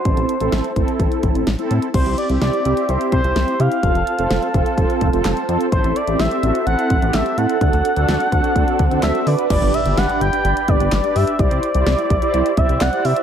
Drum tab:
CC |----------------|x---------------|----------------|----------------|
HH |xxxxxxxxxxxxxxxx|xxxxxxxxxxxxxxxx|xxxxxxxxxxxxxxxx|xxxxxxxxxxxxxxxx|
CP |----------------|----------------|------------x---|------------x---|
SD |----o-------o---|----o-------o---|----o-------o---|----o-------o---|
BD |o-----o-o-o-----|o---------o-----|o-----o-o-o-----|o---------o-----|

CC |----------------|x---------------|----------------|
HH |xxxxxxxxxxxxxxox|xxxxxxxxxxxxxxox|xxxxxxxxxxxxxxox|
CP |------------x---|------------x---|------------x---|
SD |----o-------o---|----o-------o---|----o-------o---|
BD |o-----o-o-o-----|o---------o-----|o-----o---o-----|